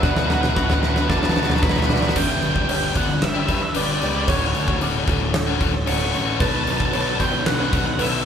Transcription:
Already playing: D3 A3 B3 D4 F#4 B4
0.03 B1 B2 F#3 F#4 B4 D5 F#5, kick, snare, floor tom
0.10 B2 F#3 F#4 B4 F#5
0.16 B2 F#3 F#4 B4 F#5, snare
0.25 B2 F#3 F#4 B4 F#5
0.29 B1 B2 F#4 B4 F#5, snare, floor tom, mid tom
0.34 F#3 B4 F#5
0.40 B2 F#3 F#4 B4 F#5, snare
0.47 B2 F#3 F#4 B4 F#5
0.55 A1 B2 F#3 F#4 B4 F#5, kick, snare
0.63 B2 F#3 F#4 B4 F#5
0.70 B2 F#3 F#4 B4, snare, floor tom
0.74 F#5
0.79 B2 F#3 F#4 B4 E5 F#5
0.83 F#3 F#4 B4, snare
0.87 B2 B4 F#5
0.94 B2 F#3 F#4 B4 F#5, snare
1.01 B2 F#3 F#4 B4 F#5
1.08 F#1 B2 F#3 D4 F#4 B4 A5, kick, snare, floor tom
1.17 B2 F#3 F#4 B4 A5
1.23 B2 F#3 F#4 B4 A5, snare
1.29 B2 F#3 F#4 B4 A5, snare
1.36 B1 B2 F#3 F#4 A5, snare
1.40 B4, snare
1.47 B2 F#3 F#4 B4 A5, snare, floor tom
1.54 B2 F#3 F#4 B4 A5, snare
1.62 B1 B2 F#3 B3 F#4 B4 A5 B5, kick, snare
1.69 B2 F#3 F#4 B4 A5 B5, snare
1.76 B2 F#3 F#4 B4 A5 B5, snare, floor tom, mid tom
1.82 B2 F#3 F#4 B4, snare
1.87 B1 D4 D5 B5, snare, mid tom
1.93 B2 F#3 F#4 B4 B5, snare
2.00 B2 F#3 F#4 B4 B5, snare, mid tom
2.07 B2 F#3 F#4 B4 B5, snare
2.15 G1 G2 D3 G3 B3 D4 G4 B4 G5 B5, kick, crash
2.24 G5
2.29 G3 B3 D4 G4 G5
2.40 G1 G5, crash
2.46 G5
2.54 G5, kick
2.62 G5
2.69 G1 G2 D3 G3 B3 D4 G4 C#5 G5, crash
2.76 G5
2.84 G5
2.95 G1 G3 B3 D4 G4 F#5, kick, crash
3.09 muted overdriven electric guitar stroke, snare
3.22 G1 B4 E5, snare, crash
3.30 E5
3.34 G3 B3 D4 G4
3.39 E5
3.47 G2 G3 B3 D4 G4 E5, kick, crash
3.55 E5
3.61 E5, muted overdriven electric guitar stroke
3.74 G1 G2 D3 G3 B3 D4 G4 B4 D5, crash
3.83 D5
3.92 D5
4.00 C#2 G3 B3 D4 G4 D5, crash
4.09 D5
4.14 G3 B3 D4 G4 D5
4.27 D1 D2 A2 D3 A3 C#4 F#4 A4 C#5 A5, kick, crash
4.37 C#4 F#4 C#5
4.42 D3 A3 C#5
4.53 D2 C#5, crash
4.63 C#5
4.68 C#5, kick
4.80 D1 D2 A2 D3 A3 C#4 F#4 D6, crash
5.07 D1 D3 A3 C#4 F#4, kick, crash
5.21 muted overdriven electric guitar stroke
5.34 D1 C#5, snare, crash
5.47 D3 A3 C#4 F#4
5.60 D1 D3 A3 C#4 F#4, kick, crash
5.74 muted overdriven electric guitar stroke
5.86 D1 D2 A2 D3 A3 C#4 F#4 C#5 C#6, crash
5.97 C#6
6.06 C#6
6.12 A1 D3 A3 C#4 C#6, crash
6.16 F#4 C#6
6.26 D3 A3 C#4 F#4 C#6
6.39 B1 B2 F#3 B3 D4 F#4 A4 B4 F#5 A5 B5, kick, crash
6.48 B4 A5
6.53 B3 D4 F#4 A5
6.64 A5, crash
6.68 B1 A5
6.78 A5, kick
6.85 A5
6.92 B1 B2 F#3 B3 D4 F#4 B4 C#5 A5, crash
7.01 A5
7.08 A5
7.19 B1 B3 D4 F#4 B4 G5, kick, crash
7.33 muted overdriven electric guitar stroke, snare
7.46 B1 B4 F#5, snare, crash
7.55 B4 F#5
7.60 B3 D4 F#4 F#5
7.70 B1 B3 D4 F#5, kick, crash
7.74 F#4 B4 F#5
7.86 F#5, muted overdriven electric guitar stroke
7.94 F#5
7.98 B1 B2 F#3 B3 D4 F#4 B4 E5, crash
8.09 E5
8.15 E5

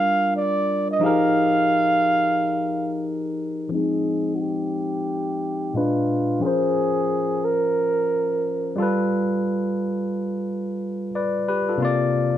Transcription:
Already playing: G3 D4 F4 A#4 F5
0.36 D5
0.91 D#5
0.99 F3 D#4 G4
1.04 G#4 A#4 F5
3.69 F3 C4 G#4
3.74 G#3 D#4
4.35 F#4
4.40 G4
5.74 A#2 G#3 D4 F4 B4
6.40 F3 C#4 F4 G#4
6.45 A#4 C5
7.44 A#4
8.76 G3 F4
8.80 A4 B4
11.15 B4 D5
11.48 G4 B4
11.69 F4 A4
11.78 C3 A#3
11.82 F4 D5

